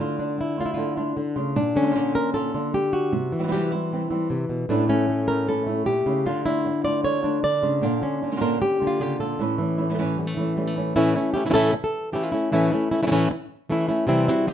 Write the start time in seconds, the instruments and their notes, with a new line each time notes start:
Already playing: nylon-string guitar F4
0.00 nylon-string guitar D3 A3 D4 F4
0.18 nylon-string guitar A3 D4 F4
0.38 nylon-string guitar E4, muted nylon-string guitar stroke
0.57 nylon-string guitar A3 D4 F4
0.66 nylon-string guitar E4
0.74 nylon-string guitar D3 A3 F4
0.78 nylon-string guitar D4 F4
0.97 nylon-string guitar A3 D4 F4
1.16 nylon-string guitar D3, muted nylon-string guitar stroke
1.36 nylon-string guitar C#3 A3 D4 F4
1.56 nylon-string guitar A#2 D4, muted nylon-string guitar stroke
1.76 nylon-string guitar D3 C#4
1.81 nylon-string guitar D3 A#3 D4 F4
1.86 nylon-string guitar D3 A#3 D4 F4
1.90 nylon-string guitar D3 A#3 D4 F4
1.95 nylon-string guitar A#2 D3 A#3 D4 F4
2.14 nylon-string guitar A#3 D4 F4 A#4
2.33 nylon-string guitar A#2 D3 A#3 D4 F4 A4
2.54 nylon-string guitar D3 A#3 D4 F4
2.73 nylon-string guitar G4, muted nylon-string guitar stroke
2.93 nylon-string guitar F#4
3.13 nylon-string guitar C3, muted nylon-string guitar stroke
3.32 nylon-string guitar E3
3.39 nylon-string guitar E3 G3 C4 E4
3.43 nylon-string guitar E3 G3 C4 E4
3.48 nylon-string guitar E3 G3 C4 E4
3.52 nylon-string guitar C3 E3 G3 C4 E4 G4
3.72 nylon-string guitar G3 C4 E4
3.91 nylon-string guitar C3 E3 G3 C4 E4
4.10 nylon-string guitar E3 G3 C4 E4
4.29 nylon-string guitar C3, muted nylon-string guitar stroke
4.49 nylon-string guitar B2
4.69 nylon-string guitar A2 E3 A3 C#4 D4 E4
4.87 nylon-string guitar A3 C#4 E4
5.07 nylon-string guitar A3, muted nylon-string guitar stroke
5.27 nylon-string guitar A3 C#4 E4 A#4
5.47 nylon-string guitar A2 E3 A3 C#4 E4 A4
5.67 nylon-string guitar A3 C#4 E4
5.86 nylon-string guitar A#2 G4, muted nylon-string guitar stroke
6.06 nylon-string guitar C#3 A3 C#4 E4
6.25 nylon-string guitar D3 A3 D4 F4
6.46 nylon-string guitar A3 D4 E4 F4
6.65 muted nylon-string guitar stroke
6.84 nylon-string guitar A3 D4 F4 D5
7.03 nylon-string guitar D3 A3 D4 F4 C#5
7.23 nylon-string guitar A3 D4 F4
7.43 nylon-string guitar D3 D5, muted nylon-string guitar stroke
7.62 nylon-string guitar C#3 A3 D4 F4
7.81 nylon-string guitar A#2 D3 A#3 D4 F4
8.01 nylon-string guitar D3 A#3 C#4 D4 F4
8.21 nylon-string guitar D3 A#3 D4 F4
8.31 nylon-string guitar D3 A#3 D4 F4
8.36 nylon-string guitar D3 A#3 D4 F4
8.40 nylon-string guitar A#2 D3 A#3 D4 F4 A#4
8.60 nylon-string guitar G4, muted nylon-string guitar stroke
8.79 nylon-string guitar D3 A#3 D4 F4
8.87 nylon-string guitar F4
8.99 nylon-string guitar C#3 D3 A#3 D4 F4 G4
9.19 nylon-string guitar A#2 A#3 D4 F4 A4
9.39 nylon-string guitar A2 E3 A3 C#4 E4
9.58 nylon-string guitar E3 A3 C#4 E4
9.78 nylon-string guitar A3 C#4 E4
9.89 nylon-string guitar E3 A3 C#4 E4
9.94 nylon-string guitar E3 A3 C#4 E4
9.99 nylon-string guitar A2 E3 A3 C#4 E4
10.18 nylon-string guitar G3, muted nylon-string guitar stroke
10.27 nylon-string guitar A3
10.37 nylon-string guitar E3 A3 C#4 E4
10.56 nylon-string guitar E3 G3 A3 C#4 E4
10.67 nylon-string guitar A3
10.75 nylon-string guitar A3 C#4 E4
10.96 nylon-string guitar A2 E3 A3 C#4 E4
11.16 nylon-string guitar A3 C#4 E4
11.34 nylon-string guitar A3 C#4 E4 G4
11.45 nylon-string guitar E3 A3 C#4 E4
11.50 nylon-string guitar E3 A3 C#4 E4
11.54 nylon-string guitar A2 E3 A3 C#4 E4 A4
11.73 muted nylon-string guitar stroke
11.84 nylon-string guitar A4
12.13 nylon-string guitar E3 A3 C#4 E4 G4
12.23 nylon-string guitar F4
12.32 nylon-string guitar A3 C#4 E4
12.52 nylon-string guitar A2 E3 A3 C#4 E4
12.72 nylon-string guitar A3 C#4 E4
12.91 nylon-string guitar A3 C#4 E4
13.03 nylon-string guitar E3 A3 C#4 E4
13.07 nylon-string guitar E3 A3 C#4 E4
13.11 nylon-string guitar A2 E3 A3 C#4 E4
13.30 muted nylon-string guitar stroke
13.70 nylon-string guitar E3 A3 C#4 E4
13.89 nylon-string guitar A3 C#4 E4
14.07 nylon-string guitar C3 E3 G3 C4 E4
14.28 nylon-string guitar G3 C4 E4 F#4
14.47 nylon-string guitar G4, muted nylon-string guitar stroke